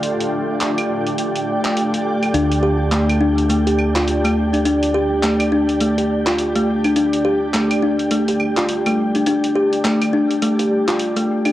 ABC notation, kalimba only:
X:1
M:4/4
L:1/16
Q:"Swing 16ths" 1/4=104
K:Gdor
V:1 name="Kalimba"
z16 | D2 G2 A,2 D2 A, G z F z A, z D | D2 G2 A,2 D2 A, G z F z A, z D | D2 G2 A,2 D2 A, G z F z A, z D |
D2 G2 A,2 D2 A, G z F z A, z D |]